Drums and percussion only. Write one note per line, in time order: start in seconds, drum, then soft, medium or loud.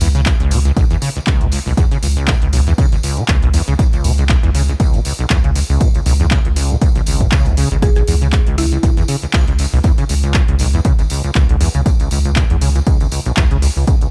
0.01 open hi-hat loud
0.01 tambourine medium
0.15 closed hi-hat soft
0.15 tambourine soft
0.26 kick loud
0.26 clap loud
0.26 closed hi-hat medium
0.26 tambourine soft
0.40 closed hi-hat soft
0.51 open hi-hat medium
0.51 tambourine medium
0.65 closed hi-hat soft
0.65 tambourine soft
0.77 kick loud
0.77 closed hi-hat medium
0.77 tambourine soft
0.90 closed hi-hat soft
0.90 tambourine soft
1.02 open hi-hat loud
1.02 tambourine medium
1.16 closed hi-hat soft
1.16 tambourine soft
1.27 kick loud
1.27 clap loud
1.27 closed hi-hat medium
1.27 tambourine soft
1.41 closed hi-hat soft
1.52 open hi-hat medium
1.52 tambourine medium
1.66 tambourine soft
1.77 kick loud
1.77 closed hi-hat medium
1.77 tambourine medium
1.91 closed hi-hat soft
1.91 tambourine soft
2.03 open hi-hat loud
2.03 tambourine medium
2.17 closed hi-hat soft
2.17 tambourine soft
2.28 kick loud
2.28 clap loud
2.28 closed hi-hat medium
2.28 tambourine soft
2.42 closed hi-hat soft
2.53 open hi-hat medium
2.53 tambourine medium
2.67 closed hi-hat soft
2.67 tambourine soft
2.78 kick loud
2.78 closed hi-hat medium
2.78 tambourine medium
2.92 closed hi-hat soft
2.92 tambourine soft
3.03 open hi-hat loud
3.03 tambourine medium
3.17 closed hi-hat soft
3.17 tambourine soft
3.28 kick loud
3.28 clap loud
3.28 closed hi-hat medium
3.28 tambourine soft
3.42 closed hi-hat soft
3.53 open hi-hat medium
3.53 tambourine medium
3.67 closed hi-hat soft
3.67 tambourine soft
3.79 kick loud
3.79 closed hi-hat medium
3.79 tambourine medium
3.93 closed hi-hat soft
3.93 tambourine soft
4.04 open hi-hat loud
4.04 tambourine medium
4.18 closed hi-hat soft
4.18 tambourine soft
4.29 kick loud
4.29 clap loud
4.29 closed hi-hat medium
4.29 tambourine medium
4.43 closed hi-hat soft
4.55 open hi-hat medium
4.55 tambourine medium
4.69 closed hi-hat soft
4.69 tambourine soft
4.80 kick loud
4.80 closed hi-hat medium
4.80 tambourine medium
4.94 closed hi-hat soft
4.94 tambourine soft
5.05 open hi-hat loud
5.05 tambourine loud
5.19 closed hi-hat soft
5.19 tambourine soft
5.30 kick loud
5.30 clap loud
5.30 closed hi-hat medium
5.30 tambourine medium
5.44 closed hi-hat soft
5.55 open hi-hat medium
5.55 tambourine medium
5.69 tambourine soft
5.80 kick loud
5.80 closed hi-hat medium
5.80 tambourine medium
5.94 closed hi-hat soft
5.94 tambourine soft
6.06 open hi-hat loud
6.06 tambourine loud
6.20 closed hi-hat soft
6.20 tambourine soft
6.31 kick loud
6.31 clap loud
6.31 closed hi-hat medium
6.31 tambourine soft
6.45 closed hi-hat soft
6.56 open hi-hat loud
6.56 tambourine medium
6.70 closed hi-hat soft
6.70 tambourine soft
6.82 kick loud
6.82 closed hi-hat medium
6.82 tambourine medium
6.95 closed hi-hat soft
6.95 tambourine soft
7.06 open hi-hat loud
7.06 tambourine loud
7.21 kick medium
7.21 closed hi-hat soft
7.21 tambourine soft
7.32 kick loud
7.32 clap loud
7.32 closed hi-hat medium
7.32 tambourine medium
7.45 closed hi-hat soft
7.45 tambourine soft
7.57 open hi-hat medium
7.57 tambourine medium
7.71 closed hi-hat soft
7.71 tambourine soft
7.82 kick loud
7.82 closed hi-hat medium
7.82 tambourine medium
7.95 closed hi-hat soft
7.95 tambourine soft
8.08 open hi-hat loud
8.08 tambourine medium
8.21 closed hi-hat soft
8.21 tambourine soft
8.33 kick loud
8.33 clap loud
8.33 closed hi-hat medium
8.33 tambourine soft
8.47 closed hi-hat soft
8.58 open hi-hat medium
8.58 tambourine medium
8.71 closed hi-hat soft
8.71 tambourine soft
8.83 kick loud
8.83 closed hi-hat medium
8.83 tambourine medium
8.97 closed hi-hat soft
8.97 tambourine soft
9.08 open hi-hat loud
9.08 tambourine medium
9.22 closed hi-hat soft
9.22 tambourine soft
9.33 kick loud
9.33 clap loud
9.33 closed hi-hat medium
9.33 tambourine medium
9.47 closed hi-hat soft
9.58 open hi-hat medium
9.58 tambourine medium
9.72 tambourine soft
9.84 kick loud
9.84 closed hi-hat medium
9.84 tambourine soft
9.98 closed hi-hat soft
9.98 tambourine soft
10.09 open hi-hat loud
10.09 tambourine medium
10.23 closed hi-hat soft
10.23 tambourine soft
10.34 kick loud
10.34 clap loud
10.34 closed hi-hat medium
10.34 tambourine soft
10.48 closed hi-hat soft
10.59 open hi-hat medium
10.59 tambourine medium
10.73 closed hi-hat soft
10.73 tambourine soft
10.85 kick loud
10.85 closed hi-hat medium
10.85 tambourine soft
10.99 closed hi-hat soft
10.99 tambourine soft
11.10 open hi-hat loud
11.10 tambourine medium
11.24 closed hi-hat soft
11.24 tambourine soft
11.35 kick loud
11.35 clap loud
11.35 closed hi-hat medium
11.35 tambourine soft
11.49 closed hi-hat soft
11.61 open hi-hat medium
11.61 tambourine medium
11.74 closed hi-hat soft
11.74 tambourine soft
11.86 kick loud
11.86 closed hi-hat medium
11.86 tambourine medium
12.00 closed hi-hat soft
12.00 tambourine soft
12.11 open hi-hat loud
12.11 tambourine loud
12.24 closed hi-hat soft
12.24 tambourine soft
12.36 kick loud
12.36 clap loud
12.36 closed hi-hat medium
12.36 tambourine soft
12.50 closed hi-hat soft
12.61 open hi-hat medium
12.61 tambourine medium
12.75 closed hi-hat soft
12.75 tambourine soft
12.87 kick loud
12.87 closed hi-hat medium
12.87 tambourine medium
13.01 closed hi-hat soft
13.01 tambourine soft
13.12 open hi-hat loud
13.12 tambourine medium
13.25 closed hi-hat soft
13.25 tambourine soft
13.37 kick loud
13.37 clap loud
13.37 closed hi-hat medium
13.37 tambourine soft
13.51 closed hi-hat soft
13.62 open hi-hat medium
13.62 tambourine medium
13.76 tambourine soft
13.87 kick loud
13.87 closed hi-hat loud
13.87 tambourine soft
14.01 closed hi-hat soft
14.01 tambourine soft